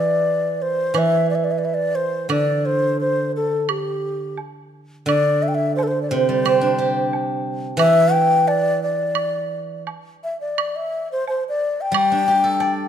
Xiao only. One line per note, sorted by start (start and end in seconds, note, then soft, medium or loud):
0.00 0.63 D5 medium
0.62 1.00 C5 medium
0.98 1.30 E5 loud
1.30 1.37 D5 medium
1.35 1.46 E5 medium
1.44 1.53 D5 medium
1.51 1.60 E5 medium
1.58 1.66 D5 medium
1.65 1.76 E5 medium
1.74 1.97 D5 medium
1.95 2.30 C5 medium
2.31 2.67 D5 medium
2.66 3.00 C5 medium
3.01 3.32 C5 medium
3.36 3.71 A4 medium
3.70 4.39 G4 medium
5.07 5.44 D5 loud
5.42 5.50 E5 medium
5.48 5.56 G5 medium
5.55 5.75 E5 medium
5.76 5.85 C5 medium
5.83 5.89 A4 medium
5.88 6.02 C5 medium
6.02 6.11 D5 medium
6.10 7.11 C5 medium
7.78 8.14 E5 loud
8.12 8.49 G5 loud
8.48 8.83 D5 medium
8.83 9.83 D5 medium
10.24 10.40 E5 medium
10.41 10.78 D5 medium
10.76 11.11 E5 medium
11.12 11.27 C5 medium
11.28 11.44 C5 medium
11.49 11.83 D5 medium
11.81 11.96 G5 medium
11.96 12.88 G5 loud